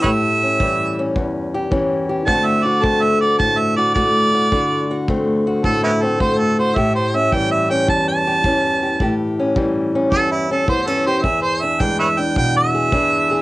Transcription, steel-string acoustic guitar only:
Already playing: G3
0.04 A2 G4
0.43 C#4
0.61 E3 G3
0.99 C#4
1.16 E2
1.54 G4
1.71 E3 C#4
2.09 G4
2.26 D3 A3 C4 F#4
2.65 F#4
2.82 A3 C4
3.22 F#4
3.40 A2
3.78 F#4
3.96 A3 F#4
4.34 F#4
4.52 D3 F#4
4.91 F#4
5.09 A3 C4
5.47 F#4
5.65 A2
6.03 C4
6.20 A3 F#4
6.59 F#4
6.76 A2 G4
7.14 C#4
7.32 E3 G3
7.71 C#4
7.88 E2
8.27 G4
8.45 E3 C#4
8.83 G4
9.01 A2 G4
9.39 C#4
9.56 E3 G3
9.95 C#4
10.13 E2
10.51 C#4
10.68 E3 B3
10.87 C#4
11.07 G4
11.24 E2 G#4
11.63 D4
11.80 E3 G#3
12.19 D4
12.37 B2
12.75 G#4
12.93 E3 D4
13.31 G#4

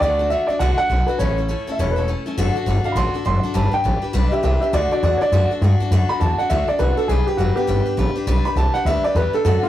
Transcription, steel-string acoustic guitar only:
0.02 D3 A3 D4 F#4 A4
0.19 D4 F#4 A4
0.30 A3 D4 F#4 A4
0.49 D4 F#4 A4
0.60 D3 A3 D4 F#4 A4
0.78 D4 F#4 A4
0.90 A3 D4 F#4 A4
1.08 D4 F#4 A4
1.19 A2 E3 A3 C#4 E4 A4
1.38 A3 C#4 E4 A4
1.48 A3 C#4 E4 A4
1.67 A3 C#4 E4 A4
1.79 A2 E3 A3 C#4 E4 A4
1.96 A3 C#4 E4 A4
2.08 A3 C#4 E4 A4
2.26 A3 C#4 E4 A4
2.38 D3 A3 D4 F#4 A4
2.56 D4 F#4 A4
2.66 A3 D4 F#4 A4
2.84 D4 F#4 A4
2.96 D3 A3 D4 F#4 A4
3.14 D4 F#4 A4
3.25 A3 D4 F#4 A4
3.43 D4 F#4 A4
3.54 G3 D4 G4 B4
3.71 D4 G4 B4
3.84 G3 D4 G4 B4
4.02 D4 G4 B4
4.13 G3 D4 G4 B4
4.32 D4 G4 B4
4.43 G3 D4 G4 B4
4.62 D4 G4 B4
4.73 D3 A3 D4 F#4 A4
4.91 D4 F#4 A4
5.03 A3 D4 F#4 A4
5.21 D4 F#4 A4
5.32 D3 A3 D4 F#4 A4
5.51 D4 F#4 A4
5.62 A3 D4 F#4 A4
5.80 D4 F#4 A4
5.92 D3 A3 D4 F#4 A4
6.10 D4 F#4 A4
6.21 A3 D4 F#4 A4
6.39 D4 F#4 A4
6.50 D3 A3 D4 F#4 A4
6.68 D4 F#4 A4
6.79 A3 D4 F#4 A4
6.97 D4 F#4 A4
7.09 G3 D4 G4 B4
7.27 D4 G4 B4
7.38 G3 D4 G4 B4
7.57 D4 G4 B4
7.67 G3 D4 G4 B4
7.86 D4 G4 B4
7.97 G3 D4 G4 B4
8.16 D4 G4 B4
8.27 G3 D4 G4 B4
8.45 D4 G4 B4
8.56 G3 D4 G4 B4
8.75 D4 G4 B4
8.86 G3 D4 G4 B4
9.04 D4 G4 B4
9.15 G3 D4 G4 B4
9.33 D4 G4 B4
9.45 D3 A3 D4 F#4 A4
9.64 D4 F#4 A4

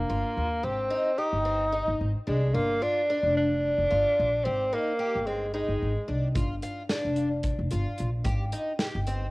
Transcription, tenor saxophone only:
Already playing: A#3
0.64 C4
1.18 D#4
2.28 G#3
2.55 A#3
2.83 D4
3.37 D4
4.45 C4
4.74 A#3
5.27 G#3
5.54 G#3

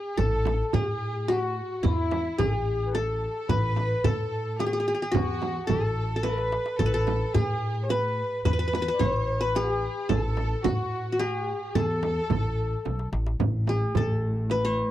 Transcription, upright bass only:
0.19 A1
0.74 A2
1.84 E2
2.40 A1
3.50 A1
4.05 A2
5.14 E2
5.70 A1
6.80 A1
7.36 A2
8.46 E2
9.00 A1
10.11 A1
10.66 A2
11.75 E2
12.30 A1
12.86 B1
13.13 A1
13.40 A1
13.95 A1

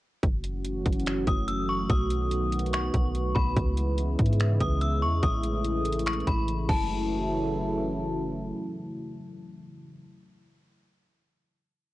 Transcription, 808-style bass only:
0.23 F#1
0.86 F#1
1.27 F#1
1.90 B1
2.94 B1
3.36 B1
3.56 C#2
4.19 G#2
4.61 C#2
5.02 E2
5.23 A1
6.27 A1
6.69 F#1

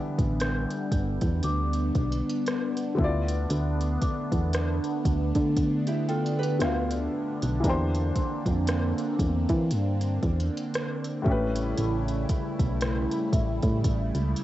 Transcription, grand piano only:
Already playing: E3 B3 D4 E4 G4
2.95 D3 B3
2.99 E4 F4
3.04 D5
6.59 D3 B3 F4 E5
6.64 F5
7.60 E3 A#3
7.65 D4 G4
7.69 C5
11.22 A2 A3
11.27 C#4 G4
11.32 B4

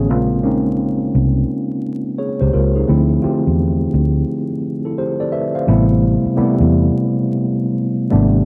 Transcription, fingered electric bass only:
Already playing: A1
0.10 A#1
1.15 C2
2.42 C#2
2.54 C#2
2.89 D2
3.25 muted fingered electric bass stroke
3.47 E2
3.94 D2
5.68 A1
6.25 muted fingered electric bass stroke
6.38 muted fingered electric bass stroke
6.60 E2
8.13 G#1

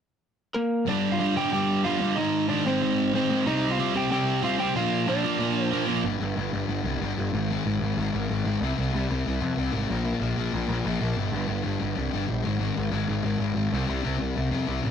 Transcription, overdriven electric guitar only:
0.87 G2 D3 G3
1.19 G2 D3 G3
1.36 G2 D3 G3
1.52 G2 D3 G3
1.84 G2 D3 G3
2.00 G2 D3 G3
2.17 G#2 D#3 G#3
2.50 G#2 D#3 G#3
2.66 G#2 D#3 G#3
2.81 G#2 D#3 G#3
3.14 G#2 D#3 G#3
3.30 G#2 D#3 G#3
3.46 C3 G3 C4
3.79 C3 G3 C4
3.95 C3 G3 C4
4.10 C3 G3 C4
4.42 C3 G3 C4
4.59 C3 G3 C4
4.75 A#2 F3 A#3
5.07 A#2 F3 A#3
5.24 A#2 F3 A#3
5.39 A#2 F3 A#3
5.71 A#2 F3 A#3
5.87 A#2 F3 A#3

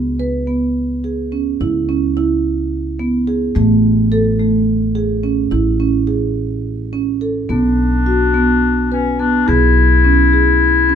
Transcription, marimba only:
0.19 B4
0.47 B3
1.04 G#4
1.32 C#4
1.61 E4
1.89 C#4
2.17 E4
2.99 B3
3.27 G#4
3.55 A3
4.12 A4
4.40 A3
4.95 G#4
5.23 C#4
5.51 E4
5.80 C#4
6.07 G#4
6.93 C#4
7.21 A4
7.49 B3
8.06 F#4
8.34 B3
8.92 B4
9.20 B3
9.48 G#4
10.04 C#4
10.33 G#4
10.89 C#4

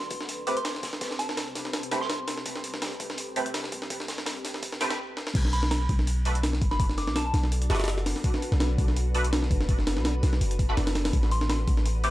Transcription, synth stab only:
0.47 A3 C4 G4 B4
1.92 A3 C4 G4 B4
3.36 A3 C4 G4 B4
4.81 A3 C4 G4 B4
6.25 A3 D4 F#4 B4
7.70 A3 D4 F#4 B4
9.15 A3 D4 F#4 B4
10.69 A3 D4 F#4 B4
12.04 A3 C4 G4 B4

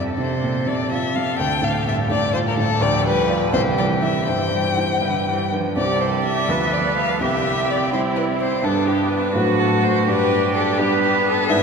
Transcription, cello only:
Already playing: C3
1.40 D3
2.82 F3
3.55 E3
4.28 E3
5.04 D3
5.29 E3
5.54 F3
5.78 G4
6.50 B4
7.22 G4
7.94 E4
8.64 D4
9.35 F#4
10.07 G4
10.78 B4
11.50 G#4

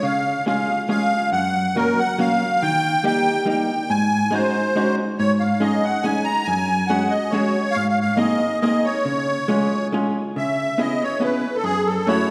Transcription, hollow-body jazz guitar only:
0.03 C#3
0.46 G#3 C#4 F4 G#4
0.89 G#3 C#4 F4 G#4
1.32 F#2
1.76 F#3 A#3 C#4 F#4
2.18 F#3 A#3 C#4 F#4
2.63 D#3
3.04 G3 A#3 D#4 G4
3.45 G3 A#3 D#4 G4
3.90 G#2
4.31 G#3 C#4 D#4 F#4
4.76 G#3 C#4 D#4 F#4
5.20 G#2
5.60 G#3 C#4 D#4 G#4
6.04 G#3 C#4 D#4 G#4
6.48 F#2
6.90 G#3 C#4 F#4 G#4
7.33 G#3 C#4 F#4 G#4
7.76 G#2
8.17 A#3 C4 D#4 G#4
8.62 A#3 C4 D#4 G#4
9.05 C#3
9.48 G#3 C#4 F4 G#4
9.92 G#3 C#4 F4 G#4
10.36 C#3
10.78 B3 C#4 E4 G#4
11.20 B3 C#4 E4 G#4
11.64 F#2
12.07 A3 C#4 E4 F#4

